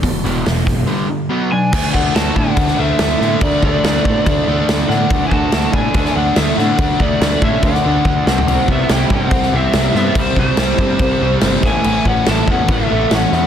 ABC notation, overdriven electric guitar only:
X:1
M:4/4
L:1/8
Q:1/4=142
K:Dlyd
V:1 name="Overdriven electric guitar" clef=bass
[E,,B,,] [E,,B,,E,] [E,,B,,] [E,,B,,] [=G,,D,=G,] [G,,D,] [B,,F,B,] [B,,F,] | [D,A,D] [D,A,D] [D,A,D] [D,A,D] [D,A,D] [D,A,D] [D,A,D] [D,A,D] | [D,A,D] [D,A,D] [D,A,D] [D,A,D] [D,A,D] [D,A,D] [D,A,D] [D,A,D] | [D,A,D] [D,A,D] [D,A,D] [D,A,D] [D,A,D] [D,A,D] [D,A,D] [D,A,D] |
[D,A,D] [D,A,D] [D,A,D] [D,A,D] [D,A,D] [D,A,D] [D,A,D] [=C,=G,=C] | [=C,=G,=C] [C,G,C] [C,G,C] [C,G,C] [C,G,C] [C,G,C] [C,G,C] [C,G,C] | [=C,=G,=C] [C,G,C] [C,G,C] [C,G,C] [C,G,C] [C,G,C] [C,G,C] [A,,E,A,] | [A,,E,A,] [A,,E,A,] [A,,E,A,] [A,,E,A,] [A,,E,A,] [A,,E,A,] [A,,E,A,] [A,,E,A,] |]